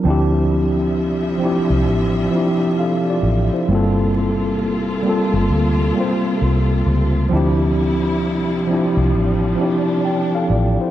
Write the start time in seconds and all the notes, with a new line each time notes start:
0.03 D2 C3 F3 G3 C4 D4 E5
0.08 E4 G4
1.38 F3 C4 D4
1.44 E4 G4
1.70 C2
1.87 A1
2.31 F3 C4 D4
2.36 E4 G4
2.79 A4 F5
3.10 F4 D5
3.23 A1
3.54 E4 C5
3.68 G1 G3 A#3 C4 F4 A4
3.73 F4 A4
5.03 G3 A#3 C4
5.07 F4 A4
5.34 G1
5.50 D2
5.94 G3 A#3 C4
5.99 F4 C5
6.41 C2
6.86 C#2
7.29 D2 F3 G3 C4 D4 E4
7.34 E4 G4
8.67 F3 C4 D4
8.72 E4 G4
8.97 C2
9.13 A1 D4
9.55 F3 C4 D4
9.60 E4 G4
10.05 G5
10.35 A4 F5
10.50 A1 F4 D5
10.81 E4 C5